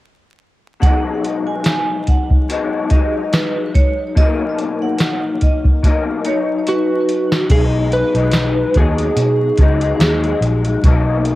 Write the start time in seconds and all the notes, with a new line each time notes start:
0.80 B2 F#3 F#5, kick, closed hi-hat
0.84 G#3 D#4
1.24 closed hi-hat
1.47 G#5
1.64 snare, closed hi-hat
2.07 F#5, kick, closed hi-hat
2.30 kick
2.49 B2 F#3 G#3 D#4, closed hi-hat
2.90 G#3 D#4 D#5, kick, closed hi-hat
2.94 F#3
3.33 B4, snare, closed hi-hat
3.74 C#5, kick, closed hi-hat
4.15 B2 F#3 D#5, kick, closed hi-hat
4.19 A#3 D#4
4.58 closed hi-hat
4.82 F#5
4.99 snare, closed hi-hat
5.41 D#5, kick, closed hi-hat
5.65 kick
5.83 B2 F#3 A#3 D#4, kick, closed hi-hat
6.24 F#3 D#4 C#5, closed hi-hat
6.67 F#4 B4, closed hi-hat
7.09 closed hi-hat
7.32 snare
7.50 B1 B2 F#3 G#3 D#4 G#4, kick, closed hi-hat, crash
7.92 B4, closed hi-hat
8.15 B1 G#3 D#4, closed hi-hat
8.19 F#3
8.32 snare, closed hi-hat
8.74 D#2 B2 F#3 G#3 G#4, kick, closed hi-hat
8.80 D#4
8.98 closed hi-hat
9.16 B2, closed hi-hat
9.57 C#2 B2 F#3 G#3, kick, closed hi-hat
9.62 D#4
9.81 closed hi-hat
9.99 D#2 F#3 G#3, snare, closed hi-hat
10.04 D#4
10.24 closed hi-hat
10.41 A#1, closed hi-hat
10.65 closed hi-hat
10.83 B1 B2 F#3 A#3 D#4, kick, closed hi-hat
11.25 closed hi-hat